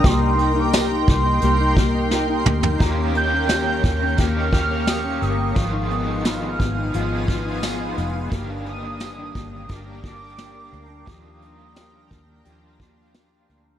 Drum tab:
HH |x-x-x-x-x-x-----|x-x-x-x-x-x-x-x-|x-x-x-x-x-x-x-x-|x-x-x-x-x-x-x-x-|
TB |----x-----------|----x-------x---|----x-------x---|----x-------x---|
SD |----o-------o---|----o-------o---|----o-------o---|----o-------o---|
T2 |--------------o-|----------------|----------------|----------------|
FT |---------------o|----------------|----------------|----------------|
BD |o-----o---o-----|o-----o-o-o-----|o-----o---o-----|o-----o-o-o-----|

HH |x-x-x-x-x-x-x-x-|
TB |----x-------x---|
SD |----o-------o---|
T2 |----------------|
FT |----------------|
BD |o-----o---o-----|